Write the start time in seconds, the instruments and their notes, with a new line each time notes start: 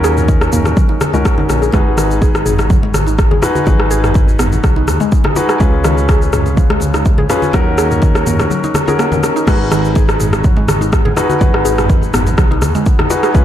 Already playing: analog synth bass D#2, felt piano C#4 D#4 F#4 A#4
0.04 synth arpeggio sound G#4, cross-stick, muted conga, shaker
0.17 mid tom, shaker
0.28 synth arpeggio sound D#3, kick, muted conga, shaker
0.41 cross-stick, shaker
0.52 analog synth bass D#2, synth arpeggio sound A#3, mid tom, shaker
0.65 cross-stick, muted conga, low conga, shaker
0.76 synth arpeggio sound F#3, kick, high conga, shaker
0.89 synth arpeggio sound D#4, muted conga
1.01 cross-stick, high conga, shaker
1.13 analog synth bass C#2, synth arpeggio sound G#3, felt piano C#4 D#4 F#4 A#4, muted conga, high conga, shaker
1.25 kick, cross-stick, shaker
1.38 synth arpeggio sound D#4, high conga, low conga
1.49 analog synth bass A#1, cross-stick, muted conga, high conga, shaker
1.62 synth arpeggio sound G#4, shaker
1.72 synth arpeggio sound G#3, felt piano D#4 F#4 G#4 B4, kick, cross-stick, muted conga, high conga, shaker
1.97 synth arpeggio sound D#3, cross-stick, muted conga, shaker
2.11 shaker
2.21 synth arpeggio sound G#4, kick, muted conga, shaker
2.35 cross-stick, shaker
2.46 analog synth bass G#1, synth arpeggio sound G#4, mid tom, shaker
2.59 cross-stick, muted conga, shaker
2.70 synth arpeggio sound F#3, kick, high conga, shaker
2.83 synth arpeggio sound G#3, muted conga
2.94 cross-stick, high conga, shaker
3.06 synth arpeggio sound D#4, muted conga, shaker
3.19 kick, cross-stick, shaker
3.31 synth arpeggio sound G#4, high conga, low conga
3.42 felt piano D#4 F#4 G#4 B4, cross-stick, muted conga, low conga, shaker
3.55 synth arpeggio sound F#4, high conga, shaker
3.66 analog synth bass G#1, synth arpeggio sound F#3, felt piano D#4 F#4 G#4 B4, kick, muted conga, high conga, shaker
3.80 cross-stick
3.91 synth arpeggio sound G#4, muted conga, shaker
4.04 cross-stick, mid tom, shaker
4.14 synth arpeggio sound D#3, kick, muted conga, shaker
4.28 shaker
4.39 analog synth bass G#1, synth arpeggio sound B3, cross-stick, mid tom, shaker
4.52 muted conga, low conga, shaker
4.64 analog synth bass B1, synth arpeggio sound F#3, kick, cross-stick, high conga, shaker
4.76 synth arpeggio sound D#4, muted conga
4.88 analog synth bass D#2, cross-stick, high conga, shaker
5.00 synth arpeggio sound G#3, muted conga, high conga, shaker
5.12 kick, shaker
5.24 synth arpeggio sound D#4, cross-stick, high conga, low conga
5.35 felt piano D#4 F#4 G#4 B4, muted conga, high conga, shaker
5.49 synth arpeggio sound G#4, cross-stick, shaker
5.60 analog synth bass C#2, synth arpeggio sound G#3, felt piano C#4 F4 G#4 B4, kick, muted conga, high conga, shaker
5.84 synth arpeggio sound D#3, cross-stick, muted conga, shaker
5.98 shaker
6.09 synth arpeggio sound G#4, kick, cross-stick, muted conga, shaker
6.22 shaker
6.33 analog synth bass C#2, synth arpeggio sound G#4, cross-stick, mid tom, shaker
6.46 muted conga, shaker
6.57 synth arpeggio sound F3, kick, high conga, shaker
6.70 synth arpeggio sound G#3, cross-stick, muted conga
6.80 high conga, shaker
6.94 synth arpeggio sound D#4, cross-stick, muted conga, shaker
7.06 kick, shaker
7.18 synth arpeggio sound G#4, high conga, low conga
7.29 felt piano C#4 F4 G#4 B4, cross-stick, muted conga, low conga, shaker
7.42 synth arpeggio sound F4, high conga, shaker
7.53 analog synth bass D#2, synth arpeggio sound F#3, felt piano C#4 D#4 F#4 A#4, kick, cross-stick, muted conga, high conga, shaker
7.78 synth arpeggio sound G#4, cross-stick, muted conga, shaker
7.91 mid tom, shaker
8.02 synth arpeggio sound D#3, kick, muted conga, shaker
8.15 cross-stick, shaker
8.27 analog synth bass D#2, synth arpeggio sound A#3, mid tom, shaker
8.39 cross-stick, muted conga, low conga, shaker
8.50 synth arpeggio sound F#3, high conga, shaker
8.64 synth arpeggio sound D#4, muted conga, shaker
8.74 cross-stick, high conga, shaker
8.88 felt piano C#4 D#4 F#4 A#4, synth arpeggio sound G#4, muted conga, high conga, shaker
8.99 synth arpeggio sound A#3, cross-stick, shaker
9.12 synth arpeggio sound D#3, high conga, low conga, shaker
9.23 cross-stick, muted conga, high conga, shaker
9.36 synth arpeggio sound D#4, shaker
9.47 analog synth bass G#1, synth arpeggio sound G#3, felt piano D#4 F#4 G#4 B4, kick, cross-stick, crash, muted conga, high conga, shaker
9.71 synth arpeggio sound D#3, cross-stick, muted conga, shaker
9.85 shaker
9.95 synth arpeggio sound G#4, kick, muted conga, shaker
10.09 cross-stick, shaker
10.20 analog synth bass G#1, synth arpeggio sound G#4, mid tom, shaker
10.33 cross-stick, muted conga, shaker
10.44 synth arpeggio sound F#3, kick, high conga, shaker
10.57 synth arpeggio sound G#3, muted conga
10.68 cross-stick, high conga, shaker
10.81 synth arpeggio sound D#4, muted conga, shaker
10.93 kick, cross-stick, shaker
11.05 synth arpeggio sound G#4, high conga, low conga
11.17 felt piano D#4 F#4 G#4 B4, cross-stick, muted conga, low conga, shaker
11.30 synth arpeggio sound F#4, high conga, shaker
11.41 analog synth bass G#1, synth arpeggio sound F#3, felt piano D#4 F#4 G#4 B4, kick, muted conga, high conga, shaker
11.54 cross-stick
11.65 synth arpeggio sound G#4, muted conga, shaker
11.78 cross-stick, mid tom, shaker
11.89 synth arpeggio sound D#3, kick, muted conga, shaker
12.03 shaker
12.14 analog synth bass G#1, synth arpeggio sound B3, cross-stick, mid tom, shaker
12.27 muted conga, low conga, shaker
12.38 analog synth bass B1, synth arpeggio sound F#3, kick, cross-stick, high conga, shaker
12.51 synth arpeggio sound D#4, muted conga
12.62 analog synth bass D#2, cross-stick, high conga, shaker
12.75 synth arpeggio sound G#3, muted conga, high conga, shaker
12.86 kick, shaker
12.99 synth arpeggio sound D#4, cross-stick, high conga, low conga
13.10 felt piano D#4 F#4 G#4 B4, muted conga, high conga, shaker
13.23 synth arpeggio sound G#4, cross-stick, shaker
13.34 analog synth bass C#2, synth arpeggio sound G#3, felt piano C#4 F4 G#4 B4, kick, muted conga, high conga, shaker